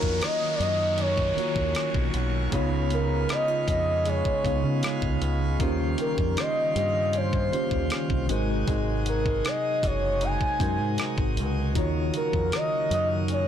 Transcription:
Already playing: D#3 F#3 A#3 C#4 F4 F#4 A#4 C#5, downlifter
0.03 F2, kick
0.21 A#4 D#5, cross-stick, closed hi-hat
0.55 D5
0.60 F#2 F#4 D#5, closed hi-hat
0.98 C#4 C#5, closed hi-hat
1.18 kick
1.36 D#3 A#3 F4 F#4 A#4 C#5, muted fingered electric bass stroke, closed hi-hat
1.56 D#2, kick
1.75 C#4, cross-stick, closed hi-hat
1.94 B1, kick
2.13 B1 F#4, closed hi-hat
2.52 C#2 C#3 G#3 B3 D#4 F4 C#5, kick, closed hi-hat
2.90 B3 A#4, closed hi-hat
3.29 D#4 D#5, cross-stick, closed hi-hat
3.48 F4
3.67 F2 B3 D#5, kick, closed hi-hat
4.06 G#3 C#5, closed hi-hat
4.25 kick
4.44 C#2 C#3 B3 D#4 F4 D#5, kick, closed hi-hat
4.64 C#3
4.83 G#3, cross-stick, closed hi-hat
5.02 C#2, kick
5.21 C#2 B3, closed hi-hat
5.59 D#2 D#3 G3 A#3 C#4 F4 G4 C5, kick, closed hi-hat
5.98 G4 A#4, closed hi-hat
6.18 F2, kick
6.37 C5 D#5, cross-stick, closed hi-hat
6.76 G2 G4 D#5, closed hi-hat
7.13 C#4 C5, closed hi-hat
7.33 kick
7.51 D#3 A#3 C#4 F4 G4 C5, muted fingered electric bass stroke, closed hi-hat
7.71 D#2, kick
7.90 C#4, cross-stick, closed hi-hat
8.10 C2, kick
8.29 G#1 C3 F#3 G#3 D#4 F#4 A#4 C5, closed hi-hat
8.68 G#1 G#3, kick, closed hi-hat
9.06 F#4 A#4, closed hi-hat
9.26 kick
9.45 D#5, cross-stick, closed hi-hat
9.83 F#1 F#4 C#5, kick, closed hi-hat
10.21 D#4 G#5, closed hi-hat
10.41 kick
10.59 F#2 G#3 D#4 F#4 A#4 C5, kick, closed hi-hat
10.79 G#2
10.98 D#4, cross-stick, closed hi-hat
11.18 G#1, kick
11.37 C#2 F#4, closed hi-hat
11.74 D#2 C#3 D#3 A#3 D#4 F4 F#4 C#5, kick, closed hi-hat
12.14 F#4 A#4, closed hi-hat
12.33 F2, kick
12.52 A#4 D#5, cross-stick, closed hi-hat
12.91 F#2 F#4 D#5, closed hi-hat
13.28 C#4 C#5, closed hi-hat

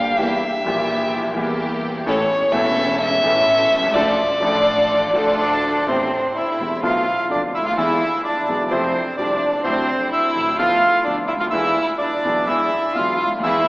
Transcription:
Already playing: G1 G2 D3 G3 A#3 D4 G4 F5
0.16 E2 E3 G3 A#3 E4 G4 E5
0.64 A#1 A#2 E3 G3 A#3 E4 G4
1.34 E2 E3 G3 A#3 E4 G4
2.06 A1 A2 E3 A3 C#4 E4 A4 C#5
2.52 E1 E2 E3 A3 C#4 E4 A4 E5
3.01 E5
3.22 A1 A2 E3 A3 C#4 E4 A4
3.26 A4
3.71 C2
3.77 B1
3.83 C2
3.89 C#2
3.94 D2 D3 F3 A3 D4 F4 A4 D5
4.40 A1 A2 F3 A3 D4 F4 A4
5.13 D2 D3 F3 A3 D4 F4 A4
5.17 A4
5.39 D4 D5
5.87 A1 A2 C3 A3 B3 C4 E4 C5
6.35 E4 E5
6.59 E1 E2 C3 A3 B3 E4
6.82 B1 B2 D3 A3 B3 F4 F5
7.30 F1 F2 D3 A3 B3 D4 F4 D5
7.53 D2 E4 E5
7.59 C#2
7.65 D2 F4 F5
7.71 D#2
7.77 E2 E3 G#3 B3 E4 G#4 E5
8.24 D4 D5
8.48 B1 B2 E3 G#3 B3 G#4
8.70 F2 C3 F3 A3 C4 E4 C5
9.17 C2 C3 F3 A3 D4 E4 D5
9.63 D2 D3 F#3 A3 C4 E4 C5
9.67 C4
10.11 E4 E5
10.15 E4
10.36 A1 A2 D3 F#3 A3 E4
10.58 D2 D3 F3 B3 F4 F5
11.04 D2 D3 F3 B3 D4 F4 D5
11.08 D4
11.28 D2 E4 E5
11.35 C#2
11.40 D2 F4 F5
11.47 D#2 E5
11.51 E2 E3 G#3 B3 E4 G#4
11.98 D4 D5
12.23 B1 B2 E3 G#3 B3 G#4
12.45 E2 E3 G#3 B3 E4 G#4 E5
12.92 B1 B2 E3 G#3 B3 F4 G#4 F5
12.98 F4
13.17 D2 F4 F5
13.23 C#2 F4
13.32 D2
13.38 D#2 E4
13.43 E2 E3 G#3 B3 E4 G#4 E5

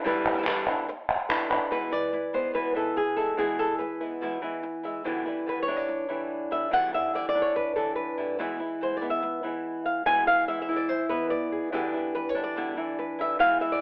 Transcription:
0.04 E2 B2 D3 E3 G3 B3 D4 E4 B4
0.26 D3 G3 B3 E4
0.33 B2 D3 G3 B3 E4
0.38 B2 D3 G3 B3 E4
0.42 B2 D3 G3 B3 E4, clap
0.47 E2 B2 D3 G3 B3 D4 E4 B4
0.67 D3 G3 B3 D4 E4 B4, clap
0.88 muted nylon-string guitar stroke
1.29 D3 G3 B3 D4 E4 B4, clap
1.50 D3 G3 B3 D4 E4 B4, clap
1.71 E2 B2 E3 G#3 B3 E4 B4
1.91 E3 G#3 B3 E4 D5
2.13 E4, muted nylon-string guitar stroke
2.33 E3 G#3 B3 E4 C5
2.54 E2 B2 E3 G#3 B3 E4 B4
2.74 E3 G#3 B3 E4 A4
2.96 G#4, muted nylon-string guitar stroke
3.17 E3 G#3 B3 E4 A4
3.37 E2 B2 E3 G#3 B3 E4 G#4
3.59 E3 G#3 B3 E4 A4
3.79 B4, muted nylon-string guitar stroke
4.01 E3 G#3 B3 E4
4.21 E2 B2 E3 G#3 B3 E4
4.42 E3 G#3 B3 E4
4.63 muted nylon-string guitar stroke
4.83 E3 G#3 B3 E4 E5
5.04 E2 B2 D3 E3 G3 B3 E4
5.25 D3 G3 B3 E4 B4
5.46 D3 G3 B3 E4 B4
5.63 C#5
5.67 D3 G3 B3 D4 E4
5.76 D5
5.88 muted nylon-string guitar stroke
6.09 D3 E3 G3 B3 E4
6.51 D3 G3 B3 E4 E5
6.71 E2 B2 D3 E3 G3 B3 E4 F#5
6.92 D3 G3 B3 E4 E5
7.14 D3 G3 B3 E4 D5
7.29 D5
7.34 D3 G3 B3 D4 E4
7.42 C#5
7.55 B4, muted nylon-string guitar stroke
7.76 D3 E3 G3 B3 E4 A4
7.96 B4
8.18 D3 G3 B3 E4
8.39 E2 B2 E3 G#3 B3 E4
8.59 E3 G#3 B3 E4
8.81 E3 G#3 B3 E4 C5
8.97 D5
9.01 E3 G#3 B3 E4
9.10 E5
9.22 muted nylon-string guitar stroke
9.43 E3 G#3 B3 E4
9.86 F5
10.06 E2 B2 E3 G#3 B3 E4 G#5
10.27 E3 G#3 B3 E4 F5
10.48 E3 G#3 B3 E4 E5
10.62 E5
10.69 E3 G#3 B3 E4
10.76 D5
10.89 C5, muted nylon-string guitar stroke
11.09 E3 G#3 B3 E4 B4
11.30 D5
11.52 G#4
11.72 E2 B2 D3 E3 G3 B3 D4 E4 G4 B4
11.94 D3 G3 B3 E4
12.15 B4, muted nylon-string guitar stroke
12.29 C#5
12.35 D3 G3 B3 D4 E4
12.44 D5
12.56 E2 B2 D3 G3 B3 E4
12.77 D3 E3 G3 B3 E4
12.98 B4, muted nylon-string guitar stroke
13.19 D3 G3 B3 E4 E5
13.39 E2 B2 E3 G#3 B3 E4 F5
13.59 E3 G#3 B3 E4 E5
13.72 D5

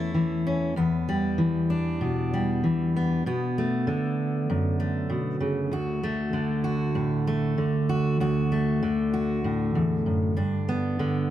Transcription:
Already playing: E2 E3 A3 C#4 E4
0.14 E3
0.47 C#4
0.76 E2 B3
1.09 G3
1.38 E3
1.70 D4
2.01 B2
2.34 G3
2.64 E3
2.96 B3
3.26 B2 B3
3.58 A3
3.87 D3
4.50 F#2
4.80 A3
5.10 B2
5.40 C#3
5.72 D2 F#4
6.03 A3
6.33 D3
6.64 F#4
6.95 A2
7.27 A3
7.58 D3
7.89 F#4
8.20 D2 F#4
8.52 A3
8.83 D3
9.14 F#4
9.44 A2
9.75 E2
10.06 F#2
10.37 G2 D4
10.69 B3
10.99 D3

